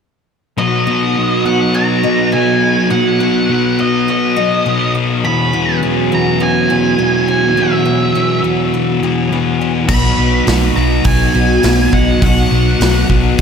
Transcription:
0.56 5.23 B2 medium
0.56 1.16 B2 medium
0.56 5.25 F#3 medium
0.56 0.86 F#3 medium
0.56 0.89 F#3 medium
0.56 0.87 B3 medium
0.56 5.24 D#4 medium
0.56 5.26 F#4 medium
0.56 1.45 D#5 medium
0.87 1.45 F#3 medium
0.87 1.17 F#3 medium
0.87 1.18 B3 medium
1.16 2.32 B2 medium
1.16 1.47 F#3 medium
1.16 1.45 B3 medium
1.45 1.74 F#3 medium
1.45 2.05 F#3 medium
1.45 2.03 B3 medium
1.45 1.76 F#5 loud
1.74 2.32 F#3 medium
1.74 2.33 A#5 loud
2.03 2.34 F#3 medium
2.03 2.35 B3 medium
2.03 3.49 D#4 medium
2.32 2.89 B2 medium
2.32 2.90 F#3 medium
2.32 2.92 F#3 medium
2.32 2.93 B3 medium
2.32 2.88 G#5 loud
2.90 3.48 B2 medium
2.90 3.20 F#3 medium
2.90 3.22 F#3 medium
2.90 3.20 B3 medium
2.90 3.80 F#5 medium
3.20 3.78 F#3 medium
3.20 3.50 F#3 medium
3.20 3.51 B3 medium
3.49 4.08 B2 medium
3.49 3.81 F#3 medium
3.49 3.78 B3 medium
3.78 4.08 F#3 medium
3.78 4.40 F#3 medium
3.78 4.37 B3 medium
3.78 4.09 D#5 medium
4.08 4.65 F#3 medium
4.08 4.92 D#5 medium
4.36 4.67 F#3 medium
4.36 4.68 B3 medium
4.36 5.24 D#4 medium
4.65 5.22 B2 medium
4.65 5.24 F#3 medium
4.65 5.26 F#3 medium
4.65 8.18 B3 medium
4.95 5.24 A#3 medium
5.23 9.89 E2 medium
5.23 5.82 E2 medium
5.23 9.87 B2 medium
5.23 5.54 B2 medium
5.23 5.52 E3 medium
5.23 6.12 F#3 medium
5.23 9.88 F#3 medium
5.23 9.90 B3 medium
5.23 9.90 C#4 medium
5.23 9.90 G#4 medium
5.23 5.79 B5 loud
5.53 5.82 B2 medium
5.53 5.84 E3 medium
5.53 6.40 B3 medium
5.82 6.98 E2 medium
5.82 6.13 B2 medium
5.82 6.11 E3 medium
5.82 7.27 C#4 medium
6.12 6.70 B2 medium
6.12 6.68 E3 medium
6.12 7.57 F#3 medium
6.12 6.42 A#5 loud
6.40 6.98 B3 medium
6.40 7.27 G#5 loud
6.69 6.98 B2 medium
6.69 7.00 E3 medium
6.69 8.15 G#4 medium
6.98 7.55 E2 medium
6.98 7.56 B2 medium
6.98 7.57 E3 medium
6.98 7.85 B3 medium
7.28 8.14 C#4 medium
7.28 7.58 G#5 medium
7.56 8.13 E2 medium
7.56 7.86 B2 medium
7.56 7.84 E3 loud
7.56 8.44 F#3 medium
7.56 8.41 E5 medium
7.85 8.14 B2 medium
7.85 8.15 E3 medium
7.85 8.73 B3 medium
8.14 8.72 E2 medium
8.14 8.44 B2 medium
8.14 8.42 E3 medium
8.14 9.60 C#4 medium
8.43 9.02 B2 medium
8.43 8.99 E3 medium
8.43 9.89 F#3 medium
8.74 9.32 B3 medium
9.00 9.29 B2 medium
9.00 9.30 E3 medium
9.00 9.90 G#4 medium
9.29 9.86 E2 medium
9.29 9.86 B2 medium
9.29 9.88 E3 medium
9.29 12.82 B3 medium
9.61 9.90 C#4 medium
9.87 10.11 B1 loud
9.87 10.46 B2 medium
9.87 13.41 B2 medium
9.87 10.19 F#3 medium
9.87 13.41 F#3 medium
9.87 10.77 F#3 medium
9.87 10.16 B3 medium
9.87 13.41 D#4 medium
9.87 13.41 F#4 medium
9.87 10.43 B5 loud
9.87 kick loud
9.87 crash loud
10.17 10.40 B1 medium
10.17 10.47 F#3 medium
10.17 10.48 B3 medium
10.46 10.70 B1 loud
10.46 11.62 B2 medium
10.46 10.78 F#3 medium
10.46 10.75 B3 medium
10.46 11.92 D#4 medium
10.46 snare loud
10.46 open hi-hat medium
10.75 10.98 B1 medium
10.75 12.22 F#3 medium
10.75 11.37 F#3 medium
10.75 11.34 B3 medium
10.75 11.05 A#5 loud
11.05 11.28 B1 medium
11.05 11.95 G#5 loud
11.05 kick loud
11.05 open hi-hat medium
11.34 11.57 B1 medium
11.34 11.64 F#3 medium
11.34 11.65 B3 medium
11.34 13.41 F#4 medium
11.63 11.86 B1 loud
11.63 12.20 B2 medium
11.63 12.23 F#3 medium
11.63 12.24 B3 medium
11.63 snare loud
11.63 open hi-hat medium
11.93 12.15 B1 medium
11.93 12.80 D#4 medium
11.93 12.23 F#5 medium
11.93 kick medium
12.22 12.44 B1 loud
12.22 12.78 B2 medium
12.22 13.09 F#3 medium
12.22 12.53 F#3 medium
12.22 12.51 B3 medium
12.22 13.07 F#5 medium
12.22 kick loud
12.22 open hi-hat medium
12.51 12.74 B1 medium
12.51 12.81 F#3 medium
12.51 12.82 B3 medium
12.80 13.02 B1 medium
12.80 13.38 B2 medium
12.80 13.12 F#3 medium
12.80 13.09 B3 medium
12.80 13.41 D#4 medium
12.80 snare loud
12.80 open hi-hat medium
13.09 13.32 B1 medium
13.09 13.41 F#3 medium
13.09 13.41 B3 medium
13.09 kick medium

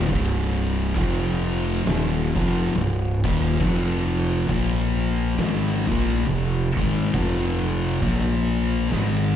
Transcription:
0.08 0.93 C1 loud
0.08 0.96 C2 loud
0.08 0.96 G2 loud
0.08 0.95 C3 loud
0.08 kick medium
0.08 open hi-hat medium
0.96 1.81 F1 loud
0.96 1.84 F2 loud
0.96 1.84 C3 medium
0.96 1.84 F3 loud
0.96 kick loud
0.96 open hi-hat medium
1.85 2.33 D#1 medium
1.85 2.35 D#2 loud
1.85 2.35 A#2 loud
1.85 2.36 D#3 loud
1.85 snare loud
1.85 open hi-hat medium
2.35 2.71 F1 medium
2.35 2.72 F2 medium
2.35 2.72 C3 loud
2.35 2.72 F3 loud
2.35 kick loud
2.72 3.22 C1 medium
2.72 3.14 C2 medium
2.72 3.15 G2 medium
2.72 open hi-hat medium
3.24 3.59 D#1 loud
3.24 3.60 D#2 medium
3.24 3.60 A#2 loud
3.24 3.60 D#3 loud
3.24 kick loud
3.60 4.46 F1 loud
3.60 4.48 F2 loud
3.60 4.48 C3 loud
3.60 4.48 F3 loud
3.60 kick loud
3.60 crash medium
4.49 5.34 A#1 loud
4.49 5.36 A#2 loud
4.49 5.37 F3 loud
4.49 5.37 A#3 loud
4.49 kick loud
4.49 open hi-hat medium
5.37 5.86 G#1 medium
5.37 5.87 G#2 loud
5.37 5.88 D#3 loud
5.37 5.88 G#3 loud
5.37 snare loud
5.37 open hi-hat medium
5.87 6.23 A#1 medium
5.87 6.24 A#2 loud
5.87 6.24 F3 medium
5.87 6.25 A#3 loud
5.87 kick loud
6.25 6.74 F1 medium
6.25 6.67 F2 medium
6.25 6.67 C3 medium
6.25 open hi-hat medium
6.76 7.11 G#1 loud
6.76 7.13 G#2 medium
6.76 7.13 D#3 loud
6.76 7.13 G#3 loud
6.76 kick loud
7.13 7.98 F1 loud
7.13 8.01 F2 loud
7.13 8.01 C3 loud
7.13 8.02 F3 loud
7.13 kick loud
7.13 open hi-hat medium
8.02 8.87 A#1 loud
8.02 8.89 A#2 medium
8.02 8.90 F3 loud
8.02 8.90 A#3 medium
8.02 kick loud
8.02 open hi-hat medium
8.90 9.36 G#1 medium
8.90 9.36 G#2 medium
8.90 9.36 D#3 loud
8.90 9.36 G#3 loud
8.90 snare medium

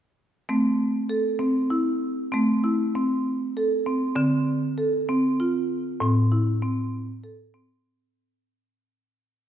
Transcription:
0.49 2.29 A3 medium
0.49 1.10 C4 medium
1.09 1.41 A4 medium
1.39 1.71 C4 medium
1.70 2.32 E4 medium
2.32 4.14 A3 medium
2.32 2.63 C4 medium
2.64 2.94 E4 medium
2.95 3.56 C4 medium
3.57 3.87 A4 medium
3.86 4.14 C4 medium
4.16 5.97 D3 medium
4.16 4.78 C4 medium
4.78 5.09 A4 medium
5.09 5.40 C4 medium
5.40 6.01 F4 medium
6.00 7.81 A2 medium
6.00 6.32 C4 medium
6.32 6.62 E4 medium
6.62 7.24 C4 medium
7.24 7.54 A4 medium
7.54 7.85 C4 medium

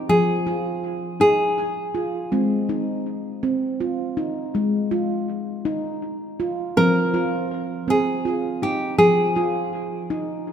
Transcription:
0.00 0.46 D#4 medium
0.09 2.28 F3 medium
0.09 0.79 G#4 medium
0.47 1.21 F4 medium
1.20 1.94 D#4 medium
1.20 2.00 G#4 medium
1.95 2.32 F4 medium
2.32 4.50 G#3 medium
2.32 2.69 C4 medium
2.69 3.43 D#4 medium
3.43 3.80 C4 medium
3.80 4.17 F4 medium
4.17 4.91 D#4 medium
4.55 6.73 G#3 medium
4.91 5.65 F4 medium
5.65 6.39 D#4 medium
6.40 6.77 F4 medium
6.77 8.95 F3 medium
6.77 7.14 C4 medium
6.77 7.47 A#4 medium
7.14 7.88 F4 medium
7.88 8.25 C4 medium
7.88 8.63 G#4 medium
8.25 8.62 F4 medium
8.62 9.36 D#4 medium
8.62 8.98 G4 medium
8.98 10.53 F3 medium
8.98 10.53 G#4 medium
9.36 10.10 F4 medium
10.10 10.53 D#4 medium

